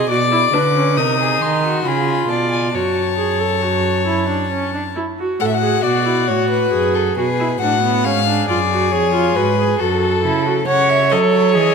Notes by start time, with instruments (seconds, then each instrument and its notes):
0.09 cello B2, viola F#4, violin D5 D6
0.31 viola E4
0.53 cello D3, viola D4, violin B4
0.75 viola C#4
0.97 cello C3, viola D#4, violin A#4 D#6
1.20 violin G#4
1.41 cello D#3, violin C6
1.65 violin F#4
1.85 cello C#3, viola F4, violin G#4 B5
2.29 cello B2, violin D5 A5
2.51 violin G#5
2.73 cello F#2, viola F#4, violin C#5 A5
3.18 viola G#4
3.40 viola A4
3.62 viola F#4
4.06 viola E4
4.29 viola D4
4.52 viola C#4
4.74 viola D4
4.96 viola E4
5.19 viola F#4
5.40 cello A2, violin F#4 F#5, viola A4
5.47 violin E5
5.54 violin F#5
5.62 viola G#4
5.83 cello B2, viola F#4, violin D5
6.06 viola E4
6.28 cello A2, viola F#4, violin C#5
6.50 violin B4
6.72 cello F#2, viola G#4
6.95 violin A4
7.16 cello B2, viola F#4, violin G#4 B4
7.40 viola E4
7.61 cello A2, viola D4, violin F#4 F#5
7.84 viola B3
8.04 cello G#2, viola C#4, violin G#4 F5
8.27 viola D4
8.49 cello F#2, viola F4, violin D5
8.72 viola F#4
8.92 cello F2, viola G#4, violin C#5
9.14 viola F4
9.36 cello G#2, viola F#4, violin B4
9.58 viola G#4
9.79 cello F#2, viola F#4, violin A4
10.24 cello C#3, viola E4
10.46 viola F#4
10.67 cello C#3, violin C#5 F#5, viola C#5
10.90 violin E5
11.11 cello F#3, viola A4, violin D#5
11.33 violin C#5
11.55 cello E3, viola G#4, violin D#5